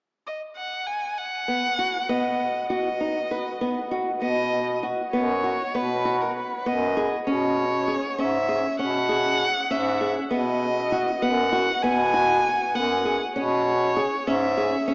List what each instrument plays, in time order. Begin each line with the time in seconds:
0.27 violin D#5
0.57 violin F#5
0.87 violin G#5
1.18 violin F#5
1.48 nylon-string guitar B3
1.79 nylon-string guitar F#4
2.09 nylon-string guitar B3, violin D#5
2.70 nylon-string guitar F#4, violin D#5
3.00 nylon-string guitar D#4
3.31 nylon-string guitar B4
3.61 nylon-string guitar B3
3.91 nylon-string guitar F#4
4.22 bass clarinet B2, nylon-string guitar B3, violin D#5
4.83 nylon-string guitar F#4
5.13 bass clarinet F#2, nylon-string guitar B3, violin C#5
5.44 nylon-string guitar F#4
5.75 bass clarinet B2, nylon-string guitar B3, violin B4
6.05 nylon-string guitar F#4
6.21 violin A#4
6.36 violin B4
6.66 bass clarinet F#2, nylon-string guitar B3, violin D#5
6.97 nylon-string guitar G#4
7.27 bass clarinet B2, nylon-string guitar C#4, violin C#5
7.88 nylon-string guitar G#4
8.18 bass clarinet G#2, nylon-string guitar C#4, violin E5
8.49 nylon-string guitar G#4
8.79 bass clarinet B2, nylon-string guitar C#4, violin F#5
9.09 nylon-string guitar G#4
9.71 bass clarinet G#2, nylon-string guitar C#4, violin E5
10.01 nylon-string guitar G#4
10.31 bass clarinet B2, nylon-string guitar B3, violin D#5
10.92 nylon-string guitar F#4
11.22 bass clarinet F#2, nylon-string guitar B3, violin F#5
11.52 nylon-string guitar F#4
11.83 bass clarinet B2, nylon-string guitar B3, violin G#5
12.14 nylon-string guitar F#4
12.74 bass clarinet F#2, nylon-string guitar B3, violin F#5
13.05 nylon-string guitar G#4
13.35 bass clarinet B2, nylon-string guitar C#4, violin C#5
13.96 nylon-string guitar G#4
14.27 bass clarinet G#2, nylon-string guitar C#4, violin E5
14.58 nylon-string guitar G#4
14.88 bass clarinet B2, nylon-string guitar C#4, violin E5